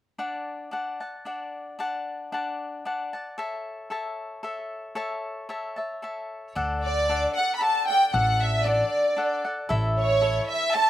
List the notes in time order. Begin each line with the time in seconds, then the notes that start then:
0.18 D4 D5 F#5 A5
0.71 D4 D5 F#5 A5
1.00 D5 F#5 A5
1.25 D4 D5 F#5 A5
1.79 D4 D5 F#5 A5
2.32 D4 D5 F#5 A5
2.85 D4 D5 F#5 A5
3.13 D5 F#5 A5
3.38 A4 C#5 E5 A5
3.90 A4 C#5 E5 A5
4.43 A4 C#5 E5 A5
4.95 A4 C#5 E5 A5
5.49 A4 C#5 E5 A5
5.76 C#5 E5 A5
6.02 A4 C#5 E5 A5
6.55 D2 D4 A4 D5 F#5
6.83 D5
7.09 D4 A4 D5 F#5
7.36 A4 D5 F#5
7.56 B5
7.60 D4 A4 D5 F#5 A5
7.88 A4 D5 F#5 G5
8.09 F#5 G5
8.13 A1 D4 A4 D5 F#5
8.41 E5
8.64 D4 A4 D5 F#5
9.17 D4 A4 D5 F#5
9.44 A4 D5 F#5
9.69 A1 E4 A4 C#5 E5
9.98 C#5
10.21 E4 A4 C#5 E5
10.49 E5
10.73 E4 A4 C#5 E5 A5